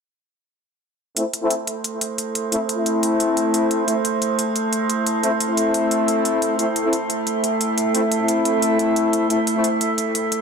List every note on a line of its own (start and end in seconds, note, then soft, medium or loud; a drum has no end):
1.17 1.23 A3 medium
1.17 10.41 A3 medium
1.17 1.23 C4 medium
1.17 10.41 E4 medium
1.17 1.23 E4 medium
1.17 10.41 A4 medium
1.17 6.57 C5 medium
1.17 closed hi-hat medium
1.34 closed hi-hat medium
1.42 1.53 A3 medium
1.42 1.53 C4 medium
1.42 1.53 E4 medium
1.50 closed hi-hat medium
1.67 closed hi-hat medium
1.84 closed hi-hat medium
2.01 closed hi-hat medium
2.18 closed hi-hat medium
2.35 closed hi-hat medium
2.52 2.59 A3 medium
2.52 2.59 C4 medium
2.52 2.59 E4 medium
2.52 closed hi-hat medium
2.69 closed hi-hat medium
2.78 3.86 A3 medium
2.78 3.86 C4 medium
2.78 3.86 E4 medium
2.86 closed hi-hat medium
3.03 closed hi-hat medium
3.20 closed hi-hat medium
3.37 closed hi-hat medium
3.54 closed hi-hat medium
3.71 closed hi-hat medium
3.88 3.95 A3 medium
3.88 3.95 C4 medium
3.88 3.95 E4 medium
3.88 closed hi-hat medium
4.05 closed hi-hat medium
4.22 closed hi-hat medium
4.39 closed hi-hat medium
4.56 closed hi-hat medium
4.73 closed hi-hat medium
4.90 closed hi-hat medium
5.07 closed hi-hat medium
5.23 5.30 A3 medium
5.23 5.30 C4 medium
5.23 5.30 E4 medium
5.23 closed hi-hat medium
5.40 closed hi-hat medium
5.49 6.57 A3 medium
5.49 6.57 C4 medium
5.49 6.57 E4 medium
5.57 closed hi-hat medium
5.74 closed hi-hat medium
5.91 closed hi-hat medium
6.08 closed hi-hat medium
6.25 closed hi-hat medium
6.42 closed hi-hat medium
6.59 6.66 A3 medium
6.59 6.66 C4 medium
6.59 6.66 E4 medium
6.59 10.41 E5 medium
6.59 closed hi-hat medium
6.76 closed hi-hat medium
6.84 6.95 A3 medium
6.84 6.95 C4 medium
6.84 6.95 E4 loud
6.93 closed hi-hat medium
7.10 closed hi-hat medium
7.27 closed hi-hat medium
7.44 closed hi-hat medium
7.61 closed hi-hat medium
7.78 closed hi-hat medium
7.95 8.01 A3 medium
7.95 8.01 C4 medium
7.95 8.01 E4 medium
7.95 closed hi-hat medium
8.12 closed hi-hat medium
8.20 9.28 A3 medium
8.20 9.28 C4 medium
8.20 9.28 E4 medium
8.28 closed hi-hat medium
8.45 closed hi-hat medium
8.62 closed hi-hat medium
8.79 closed hi-hat medium
8.96 closed hi-hat medium
9.13 closed hi-hat medium
9.30 9.37 A3 medium
9.30 9.37 C4 medium
9.30 9.37 E4 medium
9.30 closed hi-hat medium
9.47 closed hi-hat medium
9.56 9.66 A3 medium
9.56 9.66 C4 medium
9.56 9.66 E4 loud
9.64 closed hi-hat medium
9.81 closed hi-hat medium
9.98 closed hi-hat medium
10.15 closed hi-hat medium
10.32 closed hi-hat medium